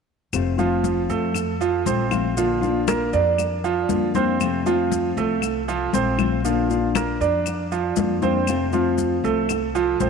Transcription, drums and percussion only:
0.33 high conga, claves, maracas
0.59 high conga, maracas
0.84 high conga, maracas
1.10 high conga, maracas
1.34 high conga, claves, maracas
1.60 high conga, maracas
1.86 high conga, maracas
2.11 high conga, claves, maracas
2.37 high conga, maracas
2.62 high conga, maracas
2.88 high conga, claves, maracas
3.13 high conga, maracas
3.38 high conga, claves, maracas
3.64 high conga, maracas
3.89 high conga, maracas
4.14 high conga, maracas
4.40 high conga, claves, maracas
4.66 high conga, maracas
4.92 high conga, maracas
5.17 high conga, maracas
5.42 high conga, claves, maracas
5.68 high conga, maracas
5.94 high conga, maracas
6.19 high conga, claves, maracas
6.45 high conga, maracas
6.70 high conga, maracas
6.95 high conga, claves, maracas
7.21 high conga, maracas
7.46 high conga, claves, maracas
7.72 high conga, maracas
7.96 high conga, maracas
8.22 high conga, maracas
8.47 high conga, claves, maracas
8.73 high conga, maracas
8.98 high conga, maracas
9.24 high conga, maracas
9.49 high conga, claves, maracas
9.75 high conga, maracas
10.00 high conga, maracas

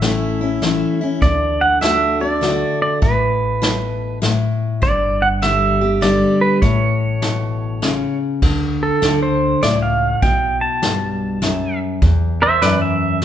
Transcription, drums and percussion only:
0.02 snare, closed hi-hat
0.62 snare, closed hi-hat
1.22 kick, closed hi-hat
1.82 snare, closed hi-hat
2.42 snare, closed hi-hat
3.02 kick, closed hi-hat
3.62 snare, closed hi-hat
4.23 snare, closed hi-hat
4.82 kick, closed hi-hat
5.42 snare, closed hi-hat
6.02 snare, closed hi-hat
6.62 kick, closed hi-hat
7.22 snare, closed hi-hat
7.82 snare, closed hi-hat
8.42 kick, crash
9.02 snare, closed hi-hat
9.63 snare, closed hi-hat
10.22 kick, closed hi-hat
10.82 snare, closed hi-hat
11.42 snare, closed hi-hat
12.02 kick, closed hi-hat
12.62 snare, closed hi-hat
13.22 snare, closed hi-hat

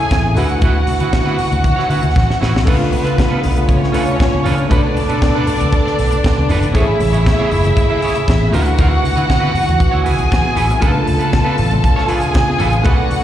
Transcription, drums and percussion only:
0.10 kick, snare, closed hi-hat, muted conga
0.36 open hi-hat, low conga
0.50 closed hi-hat
0.61 kick, closed hi-hat, low conga
0.87 open hi-hat, muted conga, high conga
1.00 closed hi-hat
1.13 kick, snare, closed hi-hat, muted conga
1.26 high conga
1.39 open hi-hat, muted conga, low conga
1.52 closed hi-hat, high conga
1.63 kick, closed hi-hat, muted conga
1.79 snare
1.90 open hi-hat
2.03 closed hi-hat, high conga
2.15 kick, snare, muted conga
2.30 snare
2.41 snare, low conga
2.56 snare
2.67 kick, crash, muted conga, low conga
2.93 open hi-hat, muted conga, high conga
3.07 closed hi-hat
3.18 kick, snare, closed hi-hat
3.30 high conga
3.44 open hi-hat, muted conga, low conga
3.57 closed hi-hat, high conga
3.69 kick, closed hi-hat, muted conga
3.84 snare
3.94 open hi-hat, muted conga
4.07 closed hi-hat, high conga
4.20 kick, snare, closed hi-hat, muted conga
4.46 open hi-hat, low conga
4.58 closed hi-hat
4.71 kick, closed hi-hat, low conga
4.97 open hi-hat, muted conga, high conga
5.10 closed hi-hat
5.22 kick, snare, closed hi-hat, muted conga
5.35 high conga
5.47 open hi-hat, muted conga, low conga
5.61 closed hi-hat, high conga
5.72 kick, closed hi-hat
5.87 snare
5.99 open hi-hat, muted conga
6.11 closed hi-hat, high conga
6.24 kick, snare, closed hi-hat, muted conga
6.49 open hi-hat, muted conga, low conga
6.63 closed hi-hat
6.74 kick, closed hi-hat, low conga
7.00 open hi-hat, high conga
7.14 closed hi-hat
7.26 kick, snare, closed hi-hat, muted conga
7.39 high conga
7.51 open hi-hat, low conga
7.65 closed hi-hat, high conga
7.77 kick, closed hi-hat
8.02 open hi-hat, muted conga
8.15 closed hi-hat, high conga
8.28 kick, snare, closed hi-hat
8.53 open hi-hat, muted conga, low conga
8.66 closed hi-hat
8.78 kick, closed hi-hat, muted conga, low conga
9.04 open hi-hat, muted conga, high conga
9.17 closed hi-hat
9.30 kick, snare, closed hi-hat
9.43 high conga
9.55 open hi-hat, muted conga, low conga
9.69 closed hi-hat, high conga
9.80 kick, closed hi-hat, muted conga
10.05 open hi-hat, muted conga
10.18 closed hi-hat, high conga
10.31 kick, snare, closed hi-hat, muted conga
10.56 open hi-hat, muted conga, low conga
10.70 closed hi-hat
10.82 kick, closed hi-hat, muted conga, low conga
11.07 open hi-hat, muted conga, high conga
11.21 closed hi-hat
11.33 kick, snare, closed hi-hat, muted conga
11.47 high conga
11.58 open hi-hat, low conga
11.71 closed hi-hat, high conga
11.84 kick, closed hi-hat, muted conga
11.98 snare
12.08 open hi-hat, muted conga
12.22 closed hi-hat, high conga
12.34 kick, snare, closed hi-hat
12.60 open hi-hat, low conga
12.73 closed hi-hat
12.85 kick, closed hi-hat, muted conga, low conga
13.11 open hi-hat, muted conga, high conga

